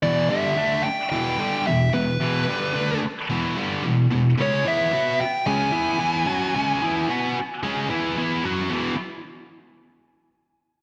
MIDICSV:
0, 0, Header, 1, 4, 480
1, 0, Start_track
1, 0, Tempo, 542005
1, 31, Time_signature, 4, 2, 24, 8
1, 9584, End_track
2, 0, Start_track
2, 0, Title_t, "Lead electric guitar"
2, 0, Program_c, 0, 29
2, 26, Note_on_c, 0, 74, 86
2, 257, Note_on_c, 0, 76, 94
2, 277, Note_off_c, 0, 74, 0
2, 736, Note_off_c, 0, 76, 0
2, 740, Note_on_c, 0, 79, 90
2, 962, Note_off_c, 0, 79, 0
2, 973, Note_on_c, 0, 79, 91
2, 1475, Note_off_c, 0, 79, 0
2, 1479, Note_on_c, 0, 76, 94
2, 1702, Note_off_c, 0, 76, 0
2, 1715, Note_on_c, 0, 71, 80
2, 2644, Note_off_c, 0, 71, 0
2, 3913, Note_on_c, 0, 73, 87
2, 4123, Note_off_c, 0, 73, 0
2, 4142, Note_on_c, 0, 76, 97
2, 4610, Note_off_c, 0, 76, 0
2, 4613, Note_on_c, 0, 79, 95
2, 4837, Note_off_c, 0, 79, 0
2, 4841, Note_on_c, 0, 80, 92
2, 7204, Note_off_c, 0, 80, 0
2, 9584, End_track
3, 0, Start_track
3, 0, Title_t, "Distorted electric guitar"
3, 0, Program_c, 1, 30
3, 27, Note_on_c, 1, 40, 93
3, 30, Note_on_c, 1, 47, 96
3, 38, Note_on_c, 1, 52, 99
3, 263, Note_off_c, 1, 40, 0
3, 264, Note_off_c, 1, 47, 0
3, 268, Note_off_c, 1, 52, 0
3, 271, Note_on_c, 1, 43, 81
3, 271, Note_on_c, 1, 50, 85
3, 282, Note_on_c, 1, 55, 95
3, 491, Note_off_c, 1, 50, 0
3, 501, Note_on_c, 1, 50, 82
3, 505, Note_off_c, 1, 43, 0
3, 506, Note_off_c, 1, 55, 0
3, 509, Note_on_c, 1, 62, 99
3, 510, Note_on_c, 1, 57, 88
3, 741, Note_off_c, 1, 50, 0
3, 745, Note_off_c, 1, 57, 0
3, 745, Note_off_c, 1, 62, 0
3, 990, Note_on_c, 1, 40, 83
3, 993, Note_on_c, 1, 47, 87
3, 1004, Note_on_c, 1, 52, 102
3, 1219, Note_off_c, 1, 40, 0
3, 1223, Note_on_c, 1, 43, 88
3, 1227, Note_off_c, 1, 47, 0
3, 1231, Note_on_c, 1, 50, 89
3, 1233, Note_off_c, 1, 52, 0
3, 1237, Note_on_c, 1, 55, 89
3, 1463, Note_off_c, 1, 43, 0
3, 1467, Note_off_c, 1, 50, 0
3, 1470, Note_off_c, 1, 55, 0
3, 1478, Note_on_c, 1, 47, 74
3, 1481, Note_on_c, 1, 40, 66
3, 1670, Note_off_c, 1, 47, 0
3, 1671, Note_off_c, 1, 40, 0
3, 1719, Note_on_c, 1, 40, 69
3, 1719, Note_on_c, 1, 47, 72
3, 1911, Note_off_c, 1, 40, 0
3, 1911, Note_off_c, 1, 47, 0
3, 1958, Note_on_c, 1, 40, 86
3, 1967, Note_on_c, 1, 47, 88
3, 1973, Note_on_c, 1, 52, 103
3, 2192, Note_off_c, 1, 40, 0
3, 2195, Note_on_c, 1, 43, 87
3, 2196, Note_off_c, 1, 47, 0
3, 2199, Note_off_c, 1, 52, 0
3, 2206, Note_on_c, 1, 50, 88
3, 2212, Note_on_c, 1, 55, 102
3, 2420, Note_off_c, 1, 50, 0
3, 2429, Note_off_c, 1, 55, 0
3, 2431, Note_off_c, 1, 43, 0
3, 2431, Note_on_c, 1, 50, 92
3, 2433, Note_on_c, 1, 57, 85
3, 2438, Note_on_c, 1, 62, 94
3, 2669, Note_off_c, 1, 50, 0
3, 2670, Note_off_c, 1, 57, 0
3, 2673, Note_off_c, 1, 62, 0
3, 2921, Note_on_c, 1, 40, 88
3, 2928, Note_on_c, 1, 47, 85
3, 2934, Note_on_c, 1, 52, 96
3, 3155, Note_off_c, 1, 40, 0
3, 3159, Note_off_c, 1, 47, 0
3, 3161, Note_off_c, 1, 52, 0
3, 3164, Note_on_c, 1, 43, 85
3, 3171, Note_on_c, 1, 50, 90
3, 3176, Note_on_c, 1, 55, 93
3, 3396, Note_off_c, 1, 43, 0
3, 3400, Note_off_c, 1, 50, 0
3, 3403, Note_off_c, 1, 55, 0
3, 3403, Note_on_c, 1, 40, 64
3, 3407, Note_on_c, 1, 47, 68
3, 3595, Note_off_c, 1, 40, 0
3, 3598, Note_off_c, 1, 47, 0
3, 3646, Note_on_c, 1, 40, 64
3, 3650, Note_on_c, 1, 47, 66
3, 3837, Note_off_c, 1, 40, 0
3, 3839, Note_off_c, 1, 47, 0
3, 3884, Note_on_c, 1, 49, 85
3, 3896, Note_on_c, 1, 61, 89
3, 3897, Note_on_c, 1, 56, 98
3, 4118, Note_off_c, 1, 49, 0
3, 4121, Note_on_c, 1, 52, 93
3, 4123, Note_off_c, 1, 61, 0
3, 4124, Note_off_c, 1, 56, 0
3, 4129, Note_on_c, 1, 59, 87
3, 4129, Note_on_c, 1, 64, 93
3, 4350, Note_off_c, 1, 59, 0
3, 4356, Note_off_c, 1, 52, 0
3, 4360, Note_off_c, 1, 64, 0
3, 4361, Note_on_c, 1, 59, 81
3, 4373, Note_on_c, 1, 71, 110
3, 4374, Note_on_c, 1, 66, 103
3, 4596, Note_off_c, 1, 59, 0
3, 4602, Note_off_c, 1, 71, 0
3, 4603, Note_off_c, 1, 66, 0
3, 4841, Note_on_c, 1, 49, 97
3, 4846, Note_on_c, 1, 56, 103
3, 4851, Note_on_c, 1, 61, 96
3, 5064, Note_off_c, 1, 49, 0
3, 5067, Note_on_c, 1, 52, 97
3, 5074, Note_off_c, 1, 61, 0
3, 5075, Note_off_c, 1, 56, 0
3, 5078, Note_on_c, 1, 64, 94
3, 5079, Note_on_c, 1, 59, 99
3, 5300, Note_off_c, 1, 52, 0
3, 5305, Note_off_c, 1, 59, 0
3, 5307, Note_off_c, 1, 64, 0
3, 5310, Note_on_c, 1, 52, 89
3, 5315, Note_on_c, 1, 59, 91
3, 5317, Note_on_c, 1, 64, 107
3, 5548, Note_off_c, 1, 52, 0
3, 5551, Note_on_c, 1, 54, 94
3, 5553, Note_off_c, 1, 59, 0
3, 5554, Note_off_c, 1, 64, 0
3, 5556, Note_on_c, 1, 61, 89
3, 5567, Note_on_c, 1, 66, 103
3, 5791, Note_off_c, 1, 54, 0
3, 5793, Note_off_c, 1, 61, 0
3, 5798, Note_off_c, 1, 66, 0
3, 5804, Note_on_c, 1, 49, 88
3, 5809, Note_on_c, 1, 56, 92
3, 5814, Note_on_c, 1, 61, 102
3, 6033, Note_off_c, 1, 49, 0
3, 6037, Note_on_c, 1, 52, 91
3, 6038, Note_off_c, 1, 56, 0
3, 6041, Note_on_c, 1, 59, 98
3, 6042, Note_off_c, 1, 61, 0
3, 6053, Note_on_c, 1, 64, 103
3, 6265, Note_off_c, 1, 59, 0
3, 6273, Note_off_c, 1, 52, 0
3, 6275, Note_on_c, 1, 59, 85
3, 6281, Note_off_c, 1, 64, 0
3, 6285, Note_on_c, 1, 66, 100
3, 6288, Note_on_c, 1, 71, 108
3, 6512, Note_off_c, 1, 59, 0
3, 6517, Note_off_c, 1, 66, 0
3, 6519, Note_off_c, 1, 71, 0
3, 6759, Note_on_c, 1, 49, 81
3, 6762, Note_on_c, 1, 56, 98
3, 6777, Note_on_c, 1, 61, 92
3, 6990, Note_off_c, 1, 49, 0
3, 6994, Note_off_c, 1, 56, 0
3, 6994, Note_on_c, 1, 52, 90
3, 7000, Note_off_c, 1, 61, 0
3, 7003, Note_on_c, 1, 59, 80
3, 7004, Note_on_c, 1, 64, 94
3, 7225, Note_off_c, 1, 52, 0
3, 7234, Note_off_c, 1, 59, 0
3, 7235, Note_off_c, 1, 64, 0
3, 7236, Note_on_c, 1, 52, 83
3, 7249, Note_on_c, 1, 59, 94
3, 7249, Note_on_c, 1, 64, 96
3, 7471, Note_off_c, 1, 52, 0
3, 7476, Note_on_c, 1, 54, 88
3, 7477, Note_off_c, 1, 59, 0
3, 7477, Note_off_c, 1, 64, 0
3, 7484, Note_on_c, 1, 61, 92
3, 7486, Note_on_c, 1, 66, 92
3, 7706, Note_on_c, 1, 40, 80
3, 7709, Note_off_c, 1, 54, 0
3, 7712, Note_on_c, 1, 47, 85
3, 7714, Note_off_c, 1, 61, 0
3, 7715, Note_off_c, 1, 66, 0
3, 7719, Note_on_c, 1, 52, 104
3, 7904, Note_off_c, 1, 40, 0
3, 7907, Note_off_c, 1, 47, 0
3, 7911, Note_off_c, 1, 52, 0
3, 9584, End_track
4, 0, Start_track
4, 0, Title_t, "Muted distorted electric guitar strokes"
4, 756, Note_on_c, 9, 29, 55
4, 845, Note_off_c, 9, 29, 0
4, 2681, Note_on_c, 9, 29, 51
4, 2769, Note_off_c, 9, 29, 0
4, 4612, Note_on_c, 9, 29, 54
4, 4701, Note_off_c, 9, 29, 0
4, 6519, Note_on_c, 9, 29, 52
4, 6608, Note_off_c, 9, 29, 0
4, 9584, End_track
0, 0, End_of_file